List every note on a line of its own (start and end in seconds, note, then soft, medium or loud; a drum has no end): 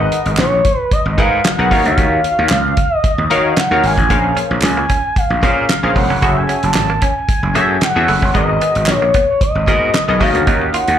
0.00 0.49 D#4 medium
0.00 0.49 G#4 medium
0.00 0.49 A#4 medium
0.00 0.49 B4 medium
0.00 0.35 D#5 loud
0.00 0.49 F#5 medium
0.12 closed hi-hat medium
0.26 0.36 G#1 loud
0.26 closed hi-hat medium
0.37 0.60 A#1 loud
0.37 0.78 C#5 medium
0.37 snare loud
0.37 clap loud
0.37 closed hi-hat loud
0.65 kick medium
0.65 closed hi-hat loud
0.78 0.94 B4 medium
0.91 1.21 D#5 loud
0.91 kick loud
0.91 closed hi-hat medium
1.05 1.16 G#1 loud
1.18 1.40 G#2 loud
1.18 1.42 D#4 medium
1.18 1.42 G#4 medium
1.18 1.42 A#4 medium
1.18 1.42 B4 medium
1.18 1.47 F5 medium
1.18 1.42 F#5 medium
1.18 kick medium
1.18 closed hi-hat medium
1.44 1.86 F#5 loud
1.44 snare loud
1.44 clap medium
1.44 closed hi-hat medium
1.58 1.69 B1 medium
1.58 1.69 D#4 medium
1.58 1.71 G#4 medium
1.58 1.70 A#4 medium
1.58 1.71 B4 medium
1.58 1.71 F#5 medium
1.71 1.83 D#2 loud
1.71 2.56 D#4 medium
1.71 2.56 F#4 medium
1.71 2.56 A#4 medium
1.71 2.57 C#5 medium
1.71 2.57 F5 medium
1.71 kick medium
1.71 open hi-hat medium
1.85 1.96 D2 medium
1.85 2.97 F5 loud
1.85 closed hi-hat soft
1.98 2.19 D#2 loud
1.98 kick loud
1.98 closed hi-hat medium
2.24 closed hi-hat medium
2.39 2.49 D#2 loud
2.49 2.73 C#2 loud
2.49 snare loud
2.49 clap loud
2.49 closed hi-hat loud
2.77 kick loud
2.77 closed hi-hat loud
2.97 3.60 D#5 loud
3.04 kick loud
3.04 closed hi-hat loud
3.18 3.28 D#2 medium
3.30 3.52 D#3 loud
3.30 3.54 D#4 medium
3.30 3.54 F#4 medium
3.30 3.54 A#4 medium
3.30 3.54 C#5 medium
3.30 3.55 F5 loud
3.30 closed hi-hat medium
3.57 3.84 F#5 loud
3.57 snare loud
3.57 clap medium
3.57 closed hi-hat medium
3.71 3.81 D#2 medium
3.71 3.95 D#4 medium
3.71 3.95 F#4 medium
3.71 3.95 A#4 medium
3.71 3.95 C#5 medium
3.71 3.95 F5 medium
3.83 3.95 G#1 medium
3.83 4.34 G#5 loud
3.83 open hi-hat medium
3.98 4.08 A1 medium
3.98 kick medium
3.98 closed hi-hat medium
4.10 4.32 A#1 loud
4.10 4.21 A#3 medium
4.10 4.74 C#4 medium
4.10 4.74 G#4 medium
4.10 4.74 A#4 medium
4.10 4.74 C5 medium
4.10 4.74 F5 medium
4.10 kick loud
4.10 closed hi-hat medium
4.24 muted clean electric guitar stroke soft
4.37 4.47 C#4 medium
4.37 closed hi-hat medium
4.51 4.61 A#1 loud
4.62 4.85 C#2 medium
4.62 5.19 G#5 medium
4.62 muted clean electric guitar stroke soft
4.62 snare loud
4.62 clap loud
4.62 closed hi-hat loud
4.77 4.87 A#3 medium
4.90 5.00 C#4 medium
4.90 kick medium
4.90 closed hi-hat loud
5.16 5.98 F5 loud
5.16 kick loud
5.16 closed hi-hat medium
5.30 5.41 A#1 medium
5.42 5.65 A#2 loud
5.42 5.53 A#3 medium
5.42 5.67 C#4 medium
5.42 5.67 G#4 medium
5.42 5.67 A#4 medium
5.42 5.67 C5 medium
5.42 5.67 F5 medium
5.42 kick medium
5.42 closed hi-hat medium
5.69 muted clean electric guitar stroke soft
5.69 snare loud
5.69 clap medium
5.69 closed hi-hat medium
5.83 5.94 A#1 medium
5.83 6.07 C#4 medium
5.83 6.07 G#4 medium
5.83 6.07 A#4 medium
5.83 6.07 C5 medium
5.83 6.07 F5 medium
5.96 6.07 E1 loud
5.96 6.07 G#3 medium
5.96 6.39 F#5 loud
5.96 kick medium
5.96 open hi-hat medium
6.10 6.20 F1 loud
6.10 6.20 C#4 medium
6.22 6.44 F#1 loud
6.22 6.86 C#4 medium
6.22 6.86 F#4 medium
6.22 6.33 F#4 medium
6.22 6.86 G#4 medium
6.22 6.86 A4 medium
6.22 6.87 E5 medium
6.22 kick loud
6.22 closed hi-hat medium
6.37 6.66 G#5 loud
6.37 muted clean electric guitar stroke soft
6.49 6.60 C#4 medium
6.49 closed hi-hat medium
6.63 6.73 F#1 loud
6.63 7.05 A5 loud
6.63 closed hi-hat medium
6.74 6.97 G#1 medium
6.74 muted clean electric guitar stroke soft
6.74 snare loud
6.74 clap loud
6.74 closed hi-hat loud
6.90 6.99 A#3 medium
7.02 7.13 C#4 medium
7.02 7.82 G#5 loud
7.02 kick medium
7.02 closed hi-hat loud
7.29 kick loud
7.29 closed hi-hat medium
7.43 7.53 F#1 loud
7.55 7.77 F#2 loud
7.55 7.66 A#3 medium
7.55 7.79 C#4 medium
7.55 7.79 F#4 medium
7.55 7.79 G#4 medium
7.55 7.79 A4 medium
7.55 7.79 E5 loud
7.55 closed hi-hat medium
7.81 8.32 F#5 loud
7.81 muted clean electric guitar stroke soft
7.81 snare loud
7.81 clap medium
7.81 closed hi-hat medium
7.95 8.06 E2 medium
7.95 8.19 C#4 medium
7.95 8.19 F#4 medium
7.95 8.19 G#4 medium
7.95 8.19 A4 medium
7.95 8.20 E5 medium
8.08 8.20 F#1 medium
8.08 8.19 A3 medium
8.08 open hi-hat medium
8.22 8.33 G1 medium
8.22 8.32 C#4 medium
8.22 kick medium
8.34 8.57 G#1 loud
8.34 8.45 G#3 medium
8.34 8.98 B3 medium
8.34 8.98 F#4 medium
8.34 8.98 G#4 medium
8.34 8.99 A#4 medium
8.34 8.99 D#5 medium
8.34 8.91 D#5 loud
8.34 kick loud
8.34 closed hi-hat medium
8.49 muted clean electric guitar stroke soft
8.61 8.72 B3 medium
8.61 closed hi-hat medium
8.75 8.86 G#1 loud
8.75 closed hi-hat medium
8.86 9.10 A#1 loud
8.86 9.29 C#5 medium
8.86 muted clean electric guitar stroke soft
8.86 snare loud
8.86 clap loud
8.86 closed hi-hat loud
9.02 9.12 A#3 medium
9.14 9.25 B3 medium
9.14 kick medium
9.14 closed hi-hat loud
9.30 9.41 C#5 medium
9.41 10.23 D#5 loud
9.41 kick loud
9.41 closed hi-hat loud
9.55 9.65 G#1 medium
9.67 9.89 G#2 loud
9.67 9.78 A#3 medium
9.67 9.91 B3 medium
9.67 9.91 F#4 medium
9.67 9.91 G#4 medium
9.67 9.92 A#4 medium
9.67 9.92 D#5 loud
9.67 kick medium
9.67 closed hi-hat medium
9.94 muted clean electric guitar stroke soft
9.94 snare loud
9.94 clap medium
9.94 closed hi-hat medium
10.08 10.19 B1 loud
10.08 10.20 B3 medium
10.08 10.19 F#4 medium
10.08 10.21 G#4 medium
10.08 10.19 A#4 medium
10.08 10.20 D#5 medium
10.20 10.32 D#2 loud
10.20 10.31 G#3 medium
10.20 10.99 C#4 medium
10.20 10.99 D#4 medium
10.20 10.99 F#4 medium
10.20 10.99 A#4 medium
10.20 10.99 D#5 medium
10.20 10.69 F5 loud
10.20 kick medium
10.20 open hi-hat medium
10.35 10.45 D2 medium
10.35 10.44 A#3 medium
10.35 closed hi-hat soft
10.47 10.69 D#2 loud
10.47 10.58 D#4 medium
10.47 kick loud
10.47 closed hi-hat medium
10.62 muted clean electric guitar stroke soft
10.69 10.77 F5 medium
10.74 10.85 F4 medium
10.74 10.99 F#5 loud
10.74 closed hi-hat medium
10.88 10.98 D#2 loud
10.88 closed hi-hat medium